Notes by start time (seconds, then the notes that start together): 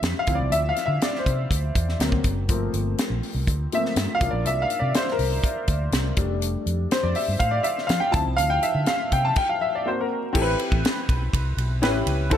Already playing: G3 A3 D4 E5
0.03 F2, snare, closed hi-hat
0.19 F5
0.27 D2 F3 C4 E4, kick, closed hi-hat
0.35 D5
0.40 C2
0.51 D2 E5, closed hi-hat
0.69 F5
0.76 snare, closed hi-hat
0.86 D3 E5
1.01 D5, snare, closed hi-hat
1.15 C5, snare
1.26 C3, kick, closed hi-hat
1.51 D2, kick, closed hi-hat
1.75 E2, kick, closed hi-hat
1.89 snare
1.99 D2 F#3 A#3 C4, snare, closed hi-hat
2.12 kick
2.24 F#1, kick, closed hi-hat
2.49 G1 F3 A3 A#3 C4, kick, closed hi-hat
2.74 G1, closed hi-hat
2.98 snare, closed hi-hat
3.10 A#1
3.23 open hi-hat
3.35 C2
3.47 D2, kick, closed hi-hat
3.72 F3 A3 A#3 C4 E5, closed hi-hat
3.85 snare
3.96 G2, snare, closed hi-hat
4.15 F5
4.21 C2 F3 A#3 D4, kick, closed hi-hat
4.31 A#1 D5
4.45 C2 E5, closed hi-hat
4.62 F5
4.70 closed hi-hat
4.79 C3 D5
4.94 C5, snare, closed hi-hat
5.08 A#4, snare
5.19 C2, open hi-hat
5.44 kick, closed hi-hat
5.67 D2, kick, closed hi-hat
5.92 C2, snare, closed hi-hat
6.17 F1 G3 A3 D4, kick, closed hi-hat
6.42 closed hi-hat
6.66 F2, closed hi-hat
6.91 C5, snare, closed hi-hat
7.03 F2 D5
7.15 E5, open hi-hat
7.28 G2
7.39 A2 F5, kick, closed hi-hat
7.51 D5
7.63 E5, closed hi-hat
7.78 snare
7.87 F3 F5, snare, closed hi-hat
8.00 G5
8.11 D2 F3 C4 E4 A5, kick, closed hi-hat
8.26 C2
8.37 D2 F5, closed hi-hat
8.50 G5
8.62 E5, closed hi-hat
8.75 D3
8.86 F5, snare, closed hi-hat
9.12 C3 G5, kick, closed hi-hat
9.25 A5
9.36 G5, kick, crash
9.49 F5
9.61 E5
9.75 D5
9.85 A#3 C4 F#4 C5
10.01 A#4
10.33 A1 C4 E4 G4 A4, kick, crash
10.42 B4
10.59 ride
10.72 A1, kick
10.85 snare, ride
11.09 B1, kick, ride
11.33 C2, kick, ride
11.57 B1, ride
11.82 A1 C#4 E4 G4 B4, snare, ride
12.06 C#2, ride
12.30 D2 C4 E4 F#4 A4, kick, ride